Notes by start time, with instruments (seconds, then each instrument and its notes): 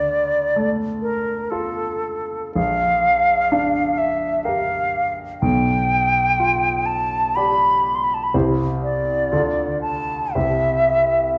Already playing: grand piano D2, flute D5
0.56 grand piano A3
1.02 flute A#4
1.50 grand piano F4 A4, flute A4
2.54 grand piano A#1, flute F5
3.52 grand piano D4
3.98 flute E5
4.44 grand piano G4 A#4, flute F5
5.41 grand piano B1, flute G5
6.40 grand piano F4
6.86 flute A5
7.36 grand piano G4 D5, flute B5
7.95 flute C6
8.04 flute B5
8.14 flute A5
8.23 flute B5
8.34 grand piano C2 E4 G4 C5
8.83 flute D5
9.32 grand piano D2 F4 A4
9.81 flute A5
10.34 grand piano C2 C4 G4 C5, flute E5